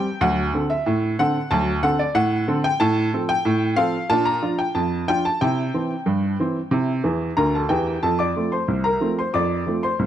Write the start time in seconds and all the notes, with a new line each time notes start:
Already playing: G5
0.21 D2 F#3 F#5
0.54 D3 C4 A4
0.70 E5
0.86 A2
1.19 D3 C4 A4 F#5
1.51 D2 F#3 A5
1.83 D3 C4 A4 F#5
1.99 D5
2.15 A2 F#5
2.48 D3 C4 A4
2.64 G5
2.80 A2 A5
3.14 F3 C4 A4
3.29 G5
3.45 A2
3.76 F3 C4 A4 F5
4.10 A#2 D4 A5
4.25 A#5
4.42 F3 D4 F4
4.59 G5
4.75 F2 A5
5.08 F3 D4 F4 G5
5.25 A5
5.41 C3 E4 G5
5.74 E3 C4
6.06 G2
6.40 E3 C4
6.71 C3 E4
7.04 E2 E3
7.37 D2 D3 A#4 A#5
7.55 A4 A5
7.69 E2 E3 G4 G5
8.03 F2 A4 A5
8.19 D5 D6
8.36 F3 A3 C4
8.52 C5 C6
8.68 C2
8.84 A#4 A#5
9.01 F3 A3 C4
9.19 C5 C6
9.34 F2 D5 D6
9.67 F3 A3 C4
9.83 C5 C6
9.99 C2